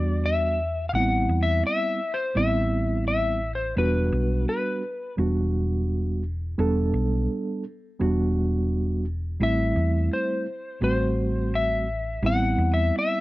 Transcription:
Already playing: E2 G3 B3 D4 F#4 D5
0.26 E5
0.89 F5
0.93 A1 G3 B3 C4 E4 F#5
1.29 E2
1.43 E5
1.67 E5
2.14 C5
2.35 A1 G3 B3 C4 E4 E5
3.08 E5
3.55 C5
3.76 E1 G3 B3 D4 F#4 B4
4.12 B1
4.49 B4
5.17 E1 G3 B3 D4 F#4
6.58 E1 G3 B3 D4 A4
6.94 B1
7.99 E1 G3 B3 D4 F#4
9.40 A1 G3 A3 C4 E4 E5
9.76 E2
10.13 C5
10.81 A1 G3 A3 C4 F#4 C5
11.55 E5
12.22 A1 G3 B3 C4 E4 F#5
12.58 E2
12.74 E5
12.99 E5

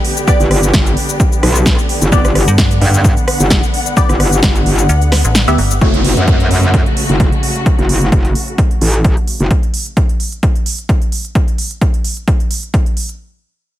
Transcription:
Already playing: D3 B3 G4 D5
0.05 open hi-hat
0.17 closed hi-hat, shaker
0.28 B3 G4 D5, kick, closed hi-hat, shaker
0.40 G1, closed hi-hat, shaker
0.51 cross-stick, open hi-hat
0.63 closed hi-hat, shaker
0.74 G1, kick, snare, closed hi-hat, shaker
0.86 closed hi-hat, shaker
0.97 open hi-hat
1.09 closed hi-hat, shaker
1.20 kick, closed hi-hat, shaker
1.32 closed hi-hat, shaker
1.43 B1, cross-stick, open hi-hat
1.55 closed hi-hat, shaker
1.66 kick, snare, closed hi-hat, shaker
1.79 closed hi-hat, shaker
1.89 open hi-hat
2.02 G1, closed hi-hat, shaker
2.12 G1 B3 G4 D5 F#5, kick, closed hi-hat, shaker
2.25 cross-stick, closed hi-hat, shaker
2.35 cross-stick, open hi-hat
2.48 G2, closed hi-hat, shaker
2.58 kick, snare, closed hi-hat, shaker
2.71 closed hi-hat, shaker
2.81 G2, open hi-hat
2.94 closed hi-hat, shaker
3.04 kick, closed hi-hat, shaker
3.17 closed hi-hat, shaker
3.28 cross-stick, open hi-hat
3.40 G1, closed hi-hat, shaker
3.50 kick, snare, closed hi-hat, shaker
3.63 closed hi-hat, shaker
3.74 open hi-hat
3.86 closed hi-hat, shaker
3.97 B3 G4 D5, kick, closed hi-hat, shaker
4.09 G1, cross-stick, closed hi-hat, shaker
4.20 cross-stick, open hi-hat
4.32 closed hi-hat, shaker
4.43 G1, kick, snare, closed hi-hat, shaker
4.55 closed hi-hat, shaker
4.66 G1, open hi-hat
4.79 closed hi-hat, shaker
4.89 D2, closed hi-hat, shaker
5.02 closed hi-hat, shaker
5.12 cross-stick, snare, open hi-hat
5.25 A1, closed hi-hat, shaker
5.35 snare, closed hi-hat, shaker
5.48 D2 B3 G4 E5, closed hi-hat, shaker
5.58 G1, open hi-hat
5.71 closed hi-hat, shaker
5.81 F#1 C#3 A3 F#4 C#5, kick, closed hi-hat, downlifter
5.94 closed hi-hat
6.04 open hi-hat
6.17 F#2, closed hi-hat
6.28 kick, closed hi-hat
6.40 closed hi-hat
6.51 F#2, open hi-hat
6.63 closed hi-hat
6.74 kick, closed hi-hat
6.86 closed hi-hat
6.97 open hi-hat
7.09 F#1, closed hi-hat
7.20 kick, closed hi-hat
7.32 closed hi-hat
7.43 open hi-hat
7.56 closed hi-hat
7.66 kick, closed hi-hat
7.79 F#1, closed hi-hat
7.89 open hi-hat
8.02 closed hi-hat
8.12 F#1, kick, closed hi-hat
8.25 closed hi-hat
8.35 open hi-hat
8.48 closed hi-hat
8.58 kick, closed hi-hat
8.71 closed hi-hat
8.81 A1, open hi-hat
8.94 closed hi-hat
9.04 kick, closed hi-hat
9.17 closed hi-hat
9.28 open hi-hat
9.40 F#1, closed hi-hat
9.51 kick, closed hi-hat
9.63 closed hi-hat
9.74 open hi-hat
9.86 closed hi-hat
9.97 kick, closed hi-hat
10.09 closed hi-hat
10.20 open hi-hat
10.32 closed hi-hat
10.43 kick, closed hi-hat
10.56 closed hi-hat
10.66 open hi-hat
10.79 closed hi-hat
10.89 kick, closed hi-hat
11.02 closed hi-hat
11.12 open hi-hat
11.25 closed hi-hat
11.35 kick, closed hi-hat
11.48 closed hi-hat
11.58 open hi-hat
11.71 closed hi-hat
11.81 kick, closed hi-hat
11.94 closed hi-hat
12.04 open hi-hat
12.17 closed hi-hat
12.28 kick, closed hi-hat
12.40 closed hi-hat
12.51 open hi-hat
12.63 closed hi-hat
12.74 kick, closed hi-hat
12.86 closed hi-hat
12.97 open hi-hat
13.09 closed hi-hat

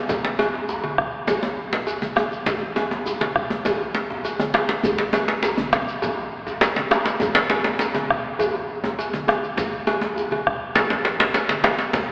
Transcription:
0.09 bombo low, djembe slap, djembe tone, low conga, djembe bass, shekere
0.25 djembe slap
0.39 cowbell, djembe tone
0.54 djembe slap, high conga
0.69 djembe tone, shekere
0.84 cowbell, high conga
0.98 bombo rim, bombo low, high conga
1.27 bombo rim, cowbell, high conga, djembe tone, low conga, djembe bass, shekere
1.43 djembe tone
1.72 bombo low, djembe slap
1.87 cowbell, shekere
2.02 djembe tone, high conga, shekere
2.16 bombo rim, cowbell, high conga, djembe tone
2.32 shekere
2.46 bombo low, djembe slap, low conga, djembe bass, shekere
2.76 cowbell, djembe tone
2.91 djembe slap, high conga, djembe tone
3.06 djembe tone, shekere
3.21 cowbell, djembe slap, high conga
3.36 bombo rim, bombo low, djembe slap
3.50 djembe tone
3.65 bombo rim, cowbell, djembe tone, high conga, djembe bass, low conga, shekere
3.81 djembe tone
3.95 djembe slap
4.10 bombo low, djembe slap
4.25 cowbell, shekere
4.40 djembe tone, high conga, shekere
4.54 bombo rim, cowbell, djembe slap, djembe tone, high conga
4.69 djembe slap
4.83 bombo low, high conga, djembe bass, low conga, shekere
4.98 djembe slap, high conga
5.13 bombo rim, cowbell, djembe slap, djembe tone, shekere
5.28 djembe slap, high conga
5.43 djembe slap, djembe tone, shekere
5.58 djembe slap, high conga, djembe bass
5.73 bombo rim, bombo low, djembe slap
5.88 bombo rim, djembe slap, shekere
6.02 cowbell, djembe slap, djembe bass, low conga, shekere
6.17 djembe tone
6.32 djembe slap
6.47 bombo low, djembe slap, shekere
6.61 cowbell, djembe slap, high conga, shekere
6.76 djembe slap, high conga
6.91 bombo rim, cowbell, djembe slap, djembe tone, shekere
7.06 bombo rim, djembe slap, shekere
7.20 bombo low, djembe slap, djembe tone, djembe bass, low conga, shekere
7.35 djembe slap
7.50 cowbell, djembe slap
7.64 djembe slap, high conga
7.79 djembe slap, djembe tone, shekere
7.95 cowbell, djembe tone, high conga
8.10 bombo rim, bombo low, djembe slap, high conga
8.39 bombo rim, cowbell, high conga, djembe bass, low conga, shekere
8.54 djembe tone
8.84 bombo low, djembe slap, djembe tone
8.99 cowbell, shekere
9.13 djembe tone, high conga, shekere
9.27 bombo rim, cowbell, djembe tone, high conga
9.44 shekere
9.57 bombo low, djembe slap, djembe tone, djembe bass, low conga, shekere
9.87 cowbell, djembe tone
10.01 djembe slap, djembe tone, high conga
10.16 djembe tone, shekere
10.31 cowbell, high conga
10.46 bombo rim, bombo low, djembe slap, high conga
10.75 bombo rim, cowbell, djembe slap, high conga, djembe bass, low conga, shekere
10.90 djembe slap, djembe tone
11.05 djembe slap
11.19 bombo low, djembe slap
11.34 cowbell, djembe slap, shekere
11.49 djembe slap, high conga, shekere
11.64 bombo rim, cowbell, djembe slap, djembe tone, high conga
11.79 djembe slap, shekere
11.93 bombo low, djembe slap, djembe bass, low conga, shekere

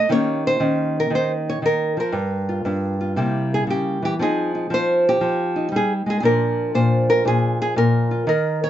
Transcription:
Already playing: D#5
0.09 D#3 A#3 C#4 G4 C#5
0.47 C5
0.60 D#3 C#4
1.00 A#4
1.10 D#3
1.15 C5
1.49 C#5
1.62 D#3 A#4
1.97 F3 A#4
2.12 G2
2.49 F4
2.65 G2 D4
3.01 F4
3.16 C3 G3 A#3 E4
3.54 G#4
3.67 C#3 G4
4.02 E3 G4
4.19 F3 C4 D#4 G#4
4.55 D#4
4.70 F3 C5
5.09 G4
5.21 F3
5.56 D#4
5.72 G3
5.76 G#4
6.06 G#3 G#4
6.20 A#2 F3 D4 G#4
6.25 F4 A#4
6.75 A#2 C5
7.10 A#4
7.25 A#2 G#4
7.62 G#4
7.76 A#2 A#4
8.11 F4
8.27 D#3 A#4
8.64 C#5

